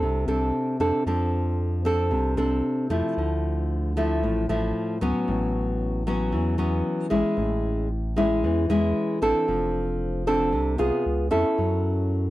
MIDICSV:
0, 0, Header, 1, 3, 480
1, 0, Start_track
1, 0, Tempo, 525855
1, 974, Time_signature, 4, 2, 24, 8
1, 11227, End_track
2, 0, Start_track
2, 0, Title_t, "Nylon-string guitar"
2, 0, Program_c, 0, 24
2, 0, Note_on_c, 0, 60, 63
2, 0, Note_on_c, 0, 62, 63
2, 0, Note_on_c, 0, 69, 59
2, 23, Note_on_c, 0, 48, 50
2, 221, Note_off_c, 0, 60, 0
2, 222, Note_off_c, 0, 62, 0
2, 227, Note_off_c, 0, 69, 0
2, 254, Note_on_c, 0, 60, 57
2, 259, Note_on_c, 0, 62, 55
2, 259, Note_on_c, 0, 69, 54
2, 696, Note_off_c, 0, 60, 0
2, 696, Note_off_c, 0, 69, 0
2, 697, Note_off_c, 0, 62, 0
2, 729, Note_on_c, 0, 60, 54
2, 732, Note_on_c, 0, 62, 60
2, 736, Note_on_c, 0, 69, 63
2, 933, Note_off_c, 0, 60, 0
2, 933, Note_off_c, 0, 62, 0
2, 937, Note_off_c, 0, 69, 0
2, 954, Note_off_c, 0, 48, 0
2, 973, Note_on_c, 0, 53, 52
2, 976, Note_on_c, 0, 60, 49
2, 979, Note_on_c, 0, 62, 51
2, 984, Note_on_c, 0, 69, 56
2, 1656, Note_off_c, 0, 60, 0
2, 1658, Note_off_c, 0, 62, 0
2, 1661, Note_off_c, 0, 69, 0
2, 1688, Note_on_c, 0, 60, 63
2, 1698, Note_on_c, 0, 62, 62
2, 1700, Note_on_c, 0, 69, 66
2, 1909, Note_off_c, 0, 53, 0
2, 1925, Note_on_c, 0, 48, 56
2, 2132, Note_off_c, 0, 60, 0
2, 2137, Note_off_c, 0, 69, 0
2, 2138, Note_off_c, 0, 62, 0
2, 2165, Note_on_c, 0, 60, 59
2, 2169, Note_on_c, 0, 62, 55
2, 2172, Note_on_c, 0, 69, 59
2, 2612, Note_off_c, 0, 60, 0
2, 2612, Note_off_c, 0, 62, 0
2, 2613, Note_off_c, 0, 69, 0
2, 2648, Note_on_c, 0, 53, 61
2, 2650, Note_on_c, 0, 57, 58
2, 2656, Note_on_c, 0, 64, 63
2, 2865, Note_off_c, 0, 48, 0
2, 2904, Note_on_c, 0, 50, 51
2, 3572, Note_off_c, 0, 57, 0
2, 3573, Note_off_c, 0, 53, 0
2, 3576, Note_off_c, 0, 64, 0
2, 3622, Note_on_c, 0, 53, 61
2, 3627, Note_on_c, 0, 57, 61
2, 3634, Note_on_c, 0, 64, 62
2, 3835, Note_off_c, 0, 50, 0
2, 3865, Note_on_c, 0, 45, 58
2, 4060, Note_off_c, 0, 53, 0
2, 4060, Note_off_c, 0, 57, 0
2, 4065, Note_off_c, 0, 64, 0
2, 4101, Note_on_c, 0, 53, 59
2, 4101, Note_on_c, 0, 57, 56
2, 4107, Note_on_c, 0, 64, 72
2, 4538, Note_off_c, 0, 57, 0
2, 4539, Note_off_c, 0, 53, 0
2, 4541, Note_off_c, 0, 64, 0
2, 4576, Note_on_c, 0, 54, 59
2, 4582, Note_on_c, 0, 59, 66
2, 4587, Note_on_c, 0, 61, 70
2, 4795, Note_off_c, 0, 45, 0
2, 4819, Note_on_c, 0, 45, 52
2, 5496, Note_off_c, 0, 54, 0
2, 5499, Note_off_c, 0, 59, 0
2, 5502, Note_off_c, 0, 61, 0
2, 5539, Note_on_c, 0, 54, 59
2, 5545, Note_on_c, 0, 59, 62
2, 5549, Note_on_c, 0, 61, 67
2, 5752, Note_off_c, 0, 45, 0
2, 5772, Note_on_c, 0, 52, 53
2, 5977, Note_off_c, 0, 54, 0
2, 5981, Note_off_c, 0, 59, 0
2, 5981, Note_off_c, 0, 61, 0
2, 6006, Note_on_c, 0, 54, 56
2, 6012, Note_on_c, 0, 59, 53
2, 6013, Note_on_c, 0, 61, 63
2, 6451, Note_off_c, 0, 54, 0
2, 6453, Note_off_c, 0, 61, 0
2, 6454, Note_off_c, 0, 59, 0
2, 6482, Note_on_c, 0, 56, 57
2, 6486, Note_on_c, 0, 61, 52
2, 6490, Note_on_c, 0, 64, 66
2, 6708, Note_off_c, 0, 52, 0
2, 6725, Note_on_c, 0, 45, 50
2, 7188, Note_off_c, 0, 56, 0
2, 7189, Note_off_c, 0, 61, 0
2, 7192, Note_off_c, 0, 64, 0
2, 7453, Note_on_c, 0, 56, 62
2, 7463, Note_on_c, 0, 61, 63
2, 7463, Note_on_c, 0, 64, 68
2, 7664, Note_off_c, 0, 45, 0
2, 7703, Note_on_c, 0, 52, 54
2, 7894, Note_off_c, 0, 56, 0
2, 7898, Note_off_c, 0, 64, 0
2, 7899, Note_off_c, 0, 61, 0
2, 7939, Note_on_c, 0, 56, 64
2, 7945, Note_on_c, 0, 61, 58
2, 7948, Note_on_c, 0, 64, 64
2, 8378, Note_off_c, 0, 56, 0
2, 8379, Note_off_c, 0, 61, 0
2, 8379, Note_off_c, 0, 64, 0
2, 8413, Note_on_c, 0, 60, 50
2, 8418, Note_on_c, 0, 62, 61
2, 8421, Note_on_c, 0, 69, 74
2, 8633, Note_off_c, 0, 52, 0
2, 8655, Note_on_c, 0, 53, 54
2, 9334, Note_off_c, 0, 60, 0
2, 9336, Note_off_c, 0, 62, 0
2, 9337, Note_off_c, 0, 69, 0
2, 9374, Note_on_c, 0, 60, 65
2, 9377, Note_on_c, 0, 62, 74
2, 9379, Note_on_c, 0, 69, 64
2, 9589, Note_off_c, 0, 53, 0
2, 9606, Note_on_c, 0, 48, 54
2, 9814, Note_off_c, 0, 60, 0
2, 9815, Note_off_c, 0, 62, 0
2, 9816, Note_off_c, 0, 69, 0
2, 9842, Note_on_c, 0, 59, 59
2, 9848, Note_on_c, 0, 65, 62
2, 9852, Note_on_c, 0, 68, 60
2, 10065, Note_off_c, 0, 48, 0
2, 10288, Note_off_c, 0, 59, 0
2, 10290, Note_off_c, 0, 65, 0
2, 10293, Note_off_c, 0, 68, 0
2, 10320, Note_on_c, 0, 61, 64
2, 10324, Note_on_c, 0, 64, 54
2, 10328, Note_on_c, 0, 69, 66
2, 10571, Note_on_c, 0, 54, 51
2, 11227, Note_off_c, 0, 54, 0
2, 11227, Note_off_c, 0, 61, 0
2, 11227, Note_off_c, 0, 64, 0
2, 11227, Note_off_c, 0, 69, 0
2, 11227, End_track
3, 0, Start_track
3, 0, Title_t, "Sub bass"
3, 0, Program_c, 1, 38
3, 9, Note_on_c, 1, 36, 109
3, 235, Note_off_c, 1, 36, 0
3, 248, Note_on_c, 1, 36, 90
3, 474, Note_off_c, 1, 36, 0
3, 726, Note_on_c, 1, 41, 74
3, 841, Note_off_c, 1, 41, 0
3, 969, Note_on_c, 1, 41, 95
3, 1932, Note_on_c, 1, 36, 112
3, 1946, Note_off_c, 1, 41, 0
3, 2156, Note_off_c, 1, 36, 0
3, 2165, Note_on_c, 1, 36, 88
3, 2392, Note_off_c, 1, 36, 0
3, 2646, Note_on_c, 1, 41, 86
3, 2761, Note_off_c, 1, 41, 0
3, 2896, Note_on_c, 1, 38, 92
3, 3852, Note_on_c, 1, 33, 111
3, 3866, Note_off_c, 1, 38, 0
3, 4076, Note_off_c, 1, 33, 0
3, 4100, Note_on_c, 1, 33, 87
3, 4320, Note_off_c, 1, 33, 0
3, 4579, Note_on_c, 1, 38, 81
3, 4687, Note_off_c, 1, 38, 0
3, 4820, Note_on_c, 1, 33, 88
3, 5778, Note_on_c, 1, 40, 108
3, 5792, Note_off_c, 1, 33, 0
3, 5999, Note_off_c, 1, 40, 0
3, 6009, Note_on_c, 1, 40, 88
3, 6234, Note_off_c, 1, 40, 0
3, 6492, Note_on_c, 1, 33, 77
3, 6604, Note_off_c, 1, 33, 0
3, 6729, Note_on_c, 1, 33, 99
3, 7689, Note_on_c, 1, 40, 113
3, 7703, Note_off_c, 1, 33, 0
3, 7914, Note_off_c, 1, 40, 0
3, 7933, Note_on_c, 1, 40, 91
3, 8156, Note_off_c, 1, 40, 0
3, 8413, Note_on_c, 1, 33, 81
3, 8524, Note_off_c, 1, 33, 0
3, 8654, Note_on_c, 1, 29, 103
3, 9608, Note_on_c, 1, 36, 105
3, 9622, Note_off_c, 1, 29, 0
3, 9832, Note_off_c, 1, 36, 0
3, 9853, Note_on_c, 1, 36, 96
3, 9964, Note_off_c, 1, 36, 0
3, 10094, Note_on_c, 1, 37, 100
3, 10316, Note_off_c, 1, 37, 0
3, 10337, Note_on_c, 1, 41, 81
3, 10446, Note_off_c, 1, 41, 0
3, 10572, Note_on_c, 1, 42, 94
3, 11227, Note_off_c, 1, 42, 0
3, 11227, End_track
0, 0, End_of_file